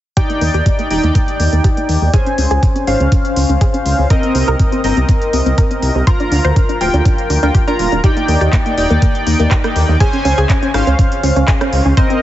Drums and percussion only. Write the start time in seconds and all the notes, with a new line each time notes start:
0.17 kick, closed hi-hat
0.30 closed hi-hat
0.41 open hi-hat
0.54 closed hi-hat
0.66 kick, closed hi-hat
0.79 closed hi-hat
0.91 open hi-hat
1.03 closed hi-hat
1.15 kick, closed hi-hat
1.28 closed hi-hat
1.40 open hi-hat
1.53 closed hi-hat
1.64 kick, closed hi-hat
1.77 closed hi-hat
1.89 open hi-hat
2.14 kick, closed hi-hat
2.26 closed hi-hat
2.38 open hi-hat
2.51 closed hi-hat
2.63 kick, closed hi-hat
2.76 closed hi-hat
2.87 open hi-hat
3.00 closed hi-hat
3.12 kick, closed hi-hat
3.25 closed hi-hat
3.36 open hi-hat
3.49 closed hi-hat
3.61 kick, closed hi-hat
3.74 closed hi-hat
3.86 open hi-hat
4.10 kick, closed hi-hat
4.23 closed hi-hat
4.35 open hi-hat
4.48 closed hi-hat
4.59 kick, closed hi-hat
4.72 closed hi-hat
4.84 open hi-hat
4.97 closed hi-hat
5.09 kick, closed hi-hat
5.22 closed hi-hat
5.33 open hi-hat
5.46 closed hi-hat
5.58 kick, closed hi-hat
5.71 closed hi-hat
5.82 open hi-hat
6.07 kick, closed hi-hat
6.20 closed hi-hat
6.32 open hi-hat
6.45 closed hi-hat
6.56 kick, closed hi-hat
6.69 closed hi-hat
6.81 open hi-hat
6.94 closed hi-hat
7.05 kick, closed hi-hat
7.18 closed hi-hat
7.30 open hi-hat
7.43 closed hi-hat
7.55 kick, closed hi-hat
7.68 closed hi-hat
7.79 open hi-hat
7.92 closed hi-hat
8.04 kick, closed hi-hat
8.17 closed hi-hat
8.28 open hi-hat
8.41 closed hi-hat
8.53 kick, clap, closed hi-hat
8.66 closed hi-hat
8.78 open hi-hat
8.90 closed hi-hat
9.02 kick, closed hi-hat
9.15 closed hi-hat
9.27 open hi-hat
9.40 closed hi-hat
9.51 kick, clap, closed hi-hat
9.64 cross-stick, closed hi-hat
9.76 open hi-hat
10.00 kick, closed hi-hat
10.13 closed hi-hat
10.25 open hi-hat
10.38 closed hi-hat
10.49 kick, clap, closed hi-hat
10.63 closed hi-hat
10.74 cross-stick, open hi-hat
10.87 closed hi-hat
10.99 kick, closed hi-hat
11.12 closed hi-hat
11.23 open hi-hat
11.36 closed hi-hat
11.48 kick, clap, closed hi-hat
11.61 cross-stick, closed hi-hat
11.73 open hi-hat
11.97 kick, closed hi-hat
12.10 closed hi-hat